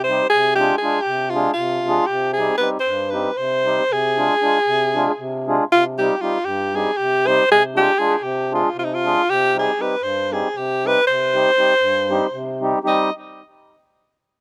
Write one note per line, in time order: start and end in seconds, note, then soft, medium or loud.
0.00 0.21 C3 medium
0.00 0.29 C5 loud
0.08 0.26 G3 medium
0.08 0.26 C4 medium
0.08 0.26 D#4 medium
0.08 0.26 G4 medium
0.29 0.71 C3 medium
0.29 0.55 G#4 loud
0.55 0.75 G#3 medium
0.55 0.76 D4 medium
0.55 0.76 F4 medium
0.55 0.77 G4 loud
0.60 0.76 G#4 medium
0.78 0.99 G#3 medium
0.78 1.03 G#4 loud
0.83 0.99 D4 medium
0.83 0.99 F4 medium
0.83 1.00 G#4 medium
1.02 1.47 C3 medium
1.02 1.31 G4 loud
1.30 1.52 G#3 medium
1.30 1.53 F4 medium
1.34 1.52 D4 medium
1.34 1.52 F4 medium
1.34 1.52 G#4 medium
1.53 1.99 C3 medium
1.53 2.08 F4 loud
1.87 2.05 G#3 medium
1.87 2.05 D4 medium
1.87 2.05 F4 medium
1.87 2.05 G#4 medium
2.06 2.49 C3 medium
2.06 2.33 G4 loud
2.33 2.57 G#4 loud
2.38 2.55 G3 medium
2.38 2.55 C4 medium
2.38 2.55 D#4 medium
2.38 2.56 G4 medium
2.58 2.77 G3 medium
2.58 2.78 C4 medium
2.58 2.78 D#4 medium
2.58 2.78 G4 medium
2.58 2.69 B4 medium
2.80 3.11 C5 loud
2.85 3.26 G2 medium
3.10 3.30 G3 medium
3.10 3.30 C4 medium
3.10 3.31 D#4 medium
3.10 3.31 G4 medium
3.10 3.38 B4 medium
3.37 3.79 C3 medium
3.37 3.94 C5 loud
3.64 3.83 G3 medium
3.64 3.84 C4 medium
3.64 3.84 D#4 medium
3.64 3.84 G4 medium
3.90 4.29 C3 medium
3.90 5.47 G#4 loud
4.17 4.35 G#3 medium
4.17 4.34 D4 medium
4.17 4.35 F4 medium
4.17 4.35 G#4 medium
4.42 4.58 G#3 medium
4.42 4.58 D4 medium
4.42 4.59 F4 medium
4.42 4.59 G#4 medium
4.67 5.06 C3 medium
4.95 5.11 G#3 medium
4.95 5.11 D4 medium
4.95 5.12 F4 medium
4.95 5.12 G#4 loud
5.19 5.59 C3 loud
5.47 5.64 G#3 medium
5.47 5.64 D4 medium
5.47 5.64 F4 medium
5.47 5.64 G#4 loud
5.72 6.09 C3 medium
5.72 5.84 F4 loud
5.98 6.14 G3 medium
5.98 6.15 C4 medium
5.98 6.15 D#4 medium
5.98 6.22 G4 medium
5.98 6.15 G4 medium
6.21 6.37 G3 medium
6.21 6.38 C4 medium
6.21 6.38 D#4 medium
6.21 6.46 F4 loud
6.21 6.38 G4 medium
6.45 6.85 G2 medium
6.45 6.77 G4 loud
6.73 6.90 G3 medium
6.73 6.91 C4 medium
6.73 6.91 D#4 medium
6.73 6.91 G4 medium
6.73 6.99 G#4 medium
6.97 7.39 C3 medium
6.97 7.28 G4 loud
7.26 7.43 G3 medium
7.26 7.44 C4 medium
7.26 7.43 D#4 medium
7.26 7.44 G4 medium
7.26 7.50 C5 loud
7.50 7.88 C3 medium
7.50 7.63 G#4 loud
7.74 7.92 G#3 medium
7.74 7.92 D4 medium
7.74 7.93 F4 medium
7.74 8.00 G4 loud
7.74 7.93 G#4 medium
7.98 8.15 G#3 medium
7.98 8.16 D4 medium
7.98 8.16 F4 medium
7.98 8.15 G#4 loud
7.98 8.16 G#4 medium
8.15 8.25 G#4 medium
8.21 8.62 C3 medium
8.21 8.52 G4 loud
8.52 8.69 G#3 medium
8.52 8.69 D4 medium
8.52 8.69 F4 medium
8.52 8.76 F4 medium
8.52 8.69 G#4 medium
8.74 9.15 C3 medium
8.79 8.86 F4 medium
8.84 8.96 D#4 medium
8.94 9.31 F4 loud
9.04 9.21 G#3 medium
9.04 9.22 D4 medium
9.04 9.22 F4 medium
9.04 9.22 G#4 medium
9.29 9.67 C3 medium
9.29 9.56 G4 loud
9.54 9.71 G3 medium
9.54 9.71 C4 medium
9.54 9.72 D#4 medium
9.54 9.72 G4 medium
9.59 9.83 G#4 medium
9.78 9.95 G3 medium
9.78 9.95 C4 medium
9.78 9.95 D#4 medium
9.78 9.96 G4 medium
9.78 10.04 B4 loud
10.01 10.42 G2 medium
10.01 10.34 C5 loud
10.30 10.47 G3 medium
10.30 10.48 C4 medium
10.30 10.48 D#4 medium
10.30 10.48 G4 medium
10.30 10.58 G#4 medium
10.55 10.95 C3 medium
10.55 10.88 G4 loud
10.83 11.00 G3 medium
10.83 11.01 C4 medium
10.83 11.01 D#4 medium
10.83 11.01 G4 medium
10.83 11.06 B4 loud
11.07 11.45 C3 medium
11.07 12.58 C5 loud
11.33 11.50 G3 medium
11.33 11.50 C4 medium
11.33 11.50 D#4 medium
11.33 11.51 G4 medium
11.57 11.73 G3 medium
11.57 11.74 C4 medium
11.57 11.74 D#4 medium
11.57 11.74 G4 medium
11.78 12.20 G2 medium
12.09 12.26 G3 medium
12.09 12.26 C4 medium
12.09 12.27 D#4 medium
12.09 12.27 G4 loud
12.32 12.73 C3 medium
12.61 12.78 G3 medium
12.61 12.78 C4 medium
12.61 12.79 D#4 medium
12.61 12.79 G4 medium
12.84 13.10 G3 medium
12.84 13.10 C4 medium
12.84 13.10 D#4 medium
12.84 13.10 G4 loud
12.84 13.11 D#5 loud